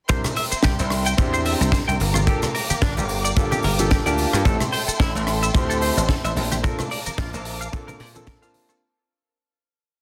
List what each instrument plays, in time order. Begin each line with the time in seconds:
0.09 slap bass C2, grand piano C4 D4 E4 G4 A#4, violin section A#4 E5 G5 C6, clean electric guitar C5, kick, closed hi-hat, shaker
0.24 cross-stick, closed hi-hat, low conga, shaker
0.36 clean electric guitar E5, open hi-hat, shaker
0.52 clean electric guitar C5, muted slap bass stroke, closed hi-hat, shaker
0.63 slap bass C2, clean electric guitar G4, kick, snare, closed hi-hat, shaker
0.79 slap bass C2, clean electric guitar C4, closed hi-hat, shaker
0.90 cross-stick, open hi-hat, shaker
1.05 clean electric guitar G5, closed hi-hat, shaker
1.17 slap bass E2, grand piano C4 D4 E4 G4 C5, kick, closed hi-hat, shaker
1.33 clean electric guitar C5, closed hi-hat, shaker
1.45 clean electric guitar E5, open hi-hat, shaker
1.60 slap bass C2, closed hi-hat, shaker
1.72 clean electric guitar C5, kick, snare, closed hi-hat, shaker
1.88 slap bass C2, clean electric guitar G5, closed hi-hat, shaker
2.00 slap bass G1, violin section F5 G5 D6, open hi-hat, shaker
2.14 clean electric guitar F4, cross-stick, closed hi-hat, high conga, shaker
2.27 grand piano A#3 D4 F4 G4 A4, clean electric guitar G4, kick, closed hi-hat, shaker
2.42 cross-stick, closed hi-hat, low conga, shaker
2.54 clean electric guitar A#4, open hi-hat, shaker
2.70 clean electric guitar G4, muted slap bass stroke, closed hi-hat, high conga, shaker
2.81 slap bass G1, clean electric guitar D4, kick, snare, closed hi-hat, shaker
2.97 slap bass G1, clean electric guitar G3, closed hi-hat, shaker
3.09 open hi-hat, shaker
3.25 clean electric guitar D5, closed hi-hat, shaker
3.36 slap bass G1, grand piano A#3 D4 F4 G4 A4, kick, closed hi-hat, shaker
3.38 shaker
3.52 clean electric guitar G4, closed hi-hat, muted conga, high conga, low conga, shaker
3.63 slap bass G1, clean electric guitar A#4, open hi-hat, shaker
3.79 grand piano A#3 D4 F4 G4 A4, closed hi-hat, muted conga, shaker
3.91 clean electric guitar G4, kick, snare, closed hi-hat, shaker
4.06 slap bass D2, grand piano A#3 D4 F4 G4 A5, clean electric guitar D5, closed hi-hat, shaker
4.18 open hi-hat, muted conga, shaker
4.33 slap bass G2, clean electric guitar F4, cross-stick, closed hi-hat, shaker
4.45 slap bass A1, grand piano A3 C4 E4 G4 A4, clean electric guitar A4, violin section A4 E5 C6, kick, closed hi-hat, shaker
4.60 cross-stick, closed hi-hat, low conga, shaker
4.72 clean electric guitar C5, open hi-hat, shaker
4.88 clean electric guitar A4, muted slap bass stroke, closed hi-hat, shaker
4.99 slap bass A1, clean electric guitar E4, kick, snare, closed hi-hat, shaker
5.02 shaker
5.15 slap bass A1, clean electric guitar A3, closed hi-hat, shaker
5.27 cross-stick, open hi-hat, shaker
5.43 clean electric guitar E5, closed hi-hat, shaker
5.54 slap bass D2, grand piano A3 C4 E4 G4 C5, kick, closed hi-hat, shaker
5.70 clean electric guitar A4, closed hi-hat, shaker
5.82 clean electric guitar C5, open hi-hat, shaker
5.97 slap bass A1, closed hi-hat, shaker
6.09 clean electric guitar A4, kick, snare, closed hi-hat, shaker
6.24 slap bass A1, clean electric guitar E5, closed hi-hat, shaker
6.36 slap bass A#1, open hi-hat, shaker
6.51 clean electric guitar G4, cross-stick, closed hi-hat, high conga, shaker
6.63 grand piano A#3 C4 D4 F4 A4, clean electric guitar A#4, violin section A#4 F5 A5 D6, kick, closed hi-hat, shaker
6.78 cross-stick, closed hi-hat, low conga, shaker
6.91 clean electric guitar D5, open hi-hat, shaker
7.06 clean electric guitar A#4, muted slap bass stroke, closed hi-hat, high conga, shaker
7.18 slap bass A#1, clean electric guitar F4, kick, snare, closed hi-hat, shaker
7.33 slap bass A#1, clean electric guitar A#3, closed hi-hat, shaker
7.45 open hi-hat, shaker
7.60 clean electric guitar F5, closed hi-hat, shaker
7.62 shaker
7.72 grand piano A#3 C4 D4 F4 A4, kick, closed hi-hat, shaker
7.88 clean electric guitar A#4, closed hi-hat, muted conga, high conga, low conga, shaker
8.00 slap bass A#2, clean electric guitar D5, open hi-hat, shaker
8.14 grand piano A#3 C4 D4 F4 A4, closed hi-hat, muted conga, high conga, shaker
8.27 clean electric guitar A#4, kick, snare, closed hi-hat, shaker
8.41 grand piano A#3 C4 D4 F4 A5, clean electric guitar F5, closed hi-hat, shaker
8.54 open hi-hat, muted conga, shaker
8.69 clean electric guitar A4, cross-stick, closed hi-hat, shaker